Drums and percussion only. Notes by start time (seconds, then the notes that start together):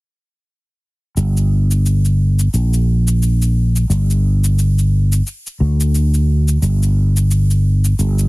1.17 cabasa
1.37 cabasa
1.71 cabasa
1.86 cabasa
2.05 cabasa
2.39 cabasa
2.54 cabasa
2.73 cabasa
3.08 cabasa
3.23 cabasa
3.42 cabasa
3.76 cabasa
3.91 cabasa
4.10 cabasa
4.44 cabasa
4.59 cabasa
4.79 cabasa
5.12 cabasa
5.27 cabasa
5.47 cabasa
5.81 cabasa
5.95 cabasa
6.14 cabasa
6.48 cabasa
6.63 cabasa
6.83 cabasa
7.17 cabasa
7.31 cabasa
7.51 cabasa
7.85 cabasa
7.99 cabasa
8.19 cabasa